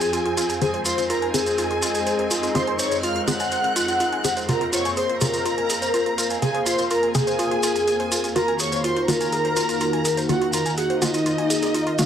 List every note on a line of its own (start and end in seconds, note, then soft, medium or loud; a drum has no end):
0.00 12.06 F2 medium
0.00 0.58 F3 medium
0.00 0.59 F3 medium
0.00 0.58 C4 medium
0.00 0.59 C4 medium
0.00 12.06 C4 medium
0.00 2.17 F4 medium
0.00 0.52 G#4 loud
0.00 0.58 G#4 medium
0.00 0.59 G#4 loud
0.00 1.50 C5 medium
0.00 0.05 C5 medium
0.00 0.58 F5 medium
0.00 1.31 F5 medium
0.00 0.52 G#5 medium
0.00 1.34 G#5 medium
0.00 closed hi-hat soft
0.00 maracas medium
0.13 0.19 F4 medium
0.13 closed hi-hat soft
0.13 maracas soft
0.26 0.29 F4 medium
0.26 closed hi-hat soft
0.37 0.43 F4 medium
0.37 closed hi-hat medium
0.37 maracas medium
0.49 0.53 G#5 medium
0.49 closed hi-hat soft
0.49 maracas soft
0.62 1.31 D#3 medium
0.62 4.45 G#3 medium
0.62 1.31 C4 medium
0.62 4.45 D#4 medium
0.62 5.38 G#4 medium
0.62 1.31 G#4 medium
0.62 0.79 G#4 medium
0.62 4.45 A#4 medium
0.62 0.65 C5 medium
0.62 4.45 C5 medium
0.62 0.79 G#5 medium
0.62 closed hi-hat soft
0.62 maracas soft
0.73 0.77 C5 medium
0.73 5.71 D#5 medium
0.73 closed hi-hat soft
0.79 5.62 A#5 medium
0.85 0.92 F4 medium
0.85 1.03 C5 medium
0.85 1.03 C6 medium
0.85 closed hi-hat medium
0.85 maracas medium
0.98 1.02 F4 medium
0.98 closed hi-hat soft
0.98 maracas medium
1.10 1.16 F4 loud
1.10 1.27 A#4 medium
1.10 1.27 A#5 medium
1.10 closed hi-hat soft
1.10 maracas soft
1.16 4.49 C6 medium
1.22 1.26 G#5 medium
1.22 closed hi-hat soft
1.34 2.52 D#3 medium
1.34 2.52 C4 medium
1.34 2.46 G#4 medium
1.34 2.52 G#4 loud
1.34 1.38 C5 medium
1.34 2.46 G#5 medium
1.34 closed hi-hat medium
1.34 maracas medium
1.46 1.50 C5 medium
1.46 closed hi-hat soft
1.46 maracas soft
1.58 1.64 F4 medium
1.58 closed hi-hat soft
1.58 maracas soft
1.71 1.74 F4 medium
1.71 closed hi-hat soft
1.82 1.89 F4 loud
1.82 closed hi-hat medium
1.82 maracas medium
1.95 1.98 G#5 medium
1.95 closed hi-hat soft
1.95 maracas soft
2.07 2.10 C5 medium
2.07 closed hi-hat soft
2.07 maracas soft
2.19 2.23 C5 medium
2.19 closed hi-hat soft
2.31 2.37 F4 loud
2.31 closed hi-hat medium
2.31 maracas medium
2.43 2.47 F4 medium
2.43 closed hi-hat soft
2.43 maracas medium
2.55 3.25 D#3 medium
2.55 3.25 C4 medium
2.55 2.61 F4 medium
2.55 3.25 G#4 loud
2.55 2.73 C5 medium
2.55 2.73 C6 medium
2.55 closed hi-hat soft
2.55 maracas soft
2.67 2.71 G#5 medium
2.67 closed hi-hat soft
2.79 2.83 C5 medium
2.79 2.97 C#5 medium
2.79 2.97 C#6 medium
2.79 closed hi-hat medium
2.79 maracas medium
2.92 2.95 C5 medium
2.92 closed hi-hat soft
2.92 maracas medium
3.03 3.10 F4 medium
3.03 3.21 F5 medium
3.03 3.21 F6 medium
3.03 closed hi-hat soft
3.03 maracas soft
3.16 3.19 F4 medium
3.16 closed hi-hat soft
3.28 4.22 D#3 medium
3.28 4.22 C4 medium
3.28 3.34 F4 medium
3.28 4.22 G#4 loud
3.28 4.39 F#5 loud
3.28 4.39 F#6 medium
3.28 closed hi-hat medium
3.28 maracas medium
3.40 3.44 G#5 medium
3.40 closed hi-hat soft
3.40 maracas soft
3.51 3.56 C5 medium
3.51 closed hi-hat soft
3.51 maracas soft
3.64 3.68 C5 medium
3.64 closed hi-hat soft
3.76 3.82 F4 loud
3.76 closed hi-hat medium
3.76 maracas medium
3.88 3.92 F4 medium
3.88 closed hi-hat soft
3.88 maracas soft
4.00 4.06 F4 medium
4.00 closed hi-hat soft
4.00 maracas soft
4.13 4.16 G#5 medium
4.13 closed hi-hat soft
4.24 4.46 D#3 medium
4.24 4.46 C4 medium
4.24 4.46 G#4 loud
4.24 4.28 C5 medium
4.24 closed hi-hat medium
4.24 maracas medium
4.37 4.40 C5 medium
4.37 closed hi-hat soft
4.37 maracas soft
4.49 5.18 C#3 medium
4.49 5.18 A#3 medium
4.49 12.06 A#3 medium
4.49 4.55 F4 loud
4.49 5.18 G#4 medium
4.49 4.66 A#4 medium
4.49 8.32 A#4 medium
4.49 12.06 A#4 medium
4.49 8.32 C5 medium
4.49 12.06 F5 medium
4.49 4.66 A#5 medium
4.49 closed hi-hat soft
4.49 maracas soft
4.61 4.65 F4 medium
4.61 8.36 F5 medium
4.61 closed hi-hat soft
4.73 4.79 F4 medium
4.73 4.90 C#5 medium
4.73 4.90 C#6 medium
4.73 closed hi-hat medium
4.73 maracas medium
4.85 4.89 G#5 medium
4.85 closed hi-hat soft
4.85 maracas soft
4.96 5.01 G#4 medium
4.96 5.15 C5 medium
4.96 5.15 C6 medium
4.96 closed hi-hat soft
4.96 maracas soft
5.09 5.13 C5 medium
5.09 closed hi-hat soft
5.21 6.39 C#3 medium
5.21 6.39 A#3 medium
5.21 5.27 F4 medium
5.21 6.39 G#4 loud
5.21 6.33 A#4 loud
5.21 6.33 A#5 medium
5.21 closed hi-hat medium
5.21 maracas medium
5.34 5.37 F4 medium
5.34 closed hi-hat soft
5.34 maracas soft
5.45 5.52 F4 medium
5.45 closed hi-hat soft
5.45 maracas soft
5.58 5.61 G#5 medium
5.58 closed hi-hat soft
5.70 5.73 G#4 medium
5.70 closed hi-hat medium
5.70 maracas medium
5.82 5.86 C5 medium
5.82 closed hi-hat soft
5.82 maracas soft
5.94 6.00 F4 medium
5.94 closed hi-hat soft
5.94 maracas soft
6.06 6.10 F4 medium
6.06 closed hi-hat soft
6.18 6.24 F4 loud
6.18 closed hi-hat medium
6.18 maracas medium
6.30 6.34 G#5 medium
6.30 closed hi-hat soft
6.30 maracas soft
6.42 7.12 C#3 medium
6.42 7.12 A#3 medium
6.42 6.46 G#4 medium
6.42 6.60 G#4 medium
6.42 7.12 G#4 medium
6.42 6.60 G#5 medium
6.42 closed hi-hat soft
6.42 maracas soft
6.55 6.58 C5 medium
6.55 closed hi-hat soft
6.66 6.73 F4 loud
6.66 6.84 C5 medium
6.66 6.84 C6 medium
6.66 closed hi-hat medium
6.66 maracas medium
6.78 6.82 F4 medium
6.78 closed hi-hat soft
6.78 maracas soft
6.91 6.97 F4 medium
6.91 7.08 A#4 medium
6.91 7.08 A#5 medium
6.91 closed hi-hat soft
6.91 maracas soft
7.03 7.06 G#5 medium
7.03 closed hi-hat soft
7.15 8.33 C#3 medium
7.15 8.33 A#3 medium
7.15 7.18 G#4 medium
7.15 8.33 G#4 loud
7.15 8.26 G#4 loud
7.15 8.26 G#5 medium
7.15 closed hi-hat medium
7.15 maracas medium
7.27 7.31 C5 medium
7.27 closed hi-hat soft
7.27 maracas soft
7.39 7.45 F4 medium
7.39 closed hi-hat soft
7.39 maracas soft
7.51 7.55 F4 medium
7.51 closed hi-hat soft
7.63 7.69 F4 loud
7.63 closed hi-hat medium
7.63 maracas medium
7.76 7.79 G#5 medium
7.76 closed hi-hat soft
7.76 maracas soft
7.87 7.91 G#4 medium
7.87 closed hi-hat soft
7.87 maracas soft
8.00 8.03 C5 medium
8.00 closed hi-hat soft
8.12 8.18 F4 loud
8.12 closed hi-hat medium
8.12 maracas medium
8.24 8.27 F4 medium
8.24 closed hi-hat soft
8.24 maracas soft
8.36 12.06 D#3 medium
8.36 9.06 D#3 medium
8.36 9.06 A#3 medium
8.36 12.06 D#4 medium
8.36 8.42 F4 loud
8.36 12.06 F#4 medium
8.36 9.06 F#4 loud
8.36 8.53 A#4 medium
8.36 8.53 A#5 medium
8.36 closed hi-hat soft
8.36 maracas soft
8.48 8.52 G#5 medium
8.48 closed hi-hat soft
8.59 8.64 G#4 medium
8.59 8.78 C#5 medium
8.59 8.78 C#6 medium
8.59 closed hi-hat medium
8.59 maracas medium
8.72 8.76 C5 medium
8.72 closed hi-hat soft
8.72 maracas soft
8.84 8.90 F4 loud
8.84 9.02 C5 medium
8.84 9.02 C6 medium
8.84 closed hi-hat soft
8.84 maracas soft
8.96 9.00 F4 medium
8.96 closed hi-hat soft
9.08 10.27 D#3 medium
9.08 10.27 A#3 medium
9.08 9.14 F4 loud
9.08 10.27 F#4 loud
9.08 10.20 A#4 loud
9.08 10.20 A#5 medium
9.08 closed hi-hat medium
9.08 maracas medium
9.21 9.24 G#5 medium
9.21 closed hi-hat soft
9.21 maracas soft
9.33 9.36 G#4 medium
9.33 closed hi-hat soft
9.33 maracas soft
9.45 9.48 C5 medium
9.45 closed hi-hat soft
9.56 9.63 F4 loud
9.56 closed hi-hat medium
9.56 maracas medium
9.69 9.73 F4 medium
9.69 closed hi-hat soft
9.69 maracas soft
9.80 9.87 F4 medium
9.80 closed hi-hat soft
9.80 maracas soft
9.93 9.97 G#5 medium
9.93 closed hi-hat soft
10.05 10.09 G#4 medium
10.05 closed hi-hat medium
10.05 maracas medium
10.17 10.21 C5 medium
10.17 closed hi-hat soft
10.17 maracas soft
10.29 10.99 D#3 medium
10.29 10.99 A#3 medium
10.29 10.35 F4 medium
10.29 10.47 F#4 medium
10.29 10.99 F#4 loud
10.29 10.47 F#5 medium
10.29 closed hi-hat soft
10.29 maracas soft
10.42 10.45 F4 medium
10.42 closed hi-hat soft
10.53 10.60 F4 loud
10.53 10.71 A#4 medium
10.53 10.71 A#5 medium
10.53 closed hi-hat medium
10.53 maracas medium
10.66 10.69 G#5 medium
10.66 closed hi-hat soft
10.66 maracas soft
10.77 10.95 F#4 medium
10.77 10.81 G#4 medium
10.77 10.95 F#5 medium
10.77 closed hi-hat soft
10.77 maracas soft
10.90 10.94 C5 medium
10.90 closed hi-hat soft
11.02 11.96 D#3 medium
11.02 11.96 A#3 medium
11.02 12.06 D#4 medium
11.02 11.08 F4 loud
11.02 11.96 F#4 loud
11.02 12.06 D#5 medium
11.02 closed hi-hat medium
11.02 maracas medium
11.14 11.18 F4 medium
11.14 closed hi-hat soft
11.14 maracas soft
11.26 11.32 F4 medium
11.26 closed hi-hat soft
11.26 maracas soft
11.38 11.42 G#5 medium
11.38 closed hi-hat soft
11.50 11.54 G#4 medium
11.50 closed hi-hat medium
11.50 maracas medium
11.62 11.68 G#4 medium
11.62 closed hi-hat soft
11.62 maracas soft
11.74 11.78 F4 medium
11.74 closed hi-hat soft
11.74 maracas soft
11.87 11.90 F4 loud
11.87 closed hi-hat soft
11.98 12.06 D#3 medium
11.98 12.06 A#3 medium
11.98 12.06 F#4 loud
11.98 12.02 F5 medium
11.98 closed hi-hat medium
11.98 maracas medium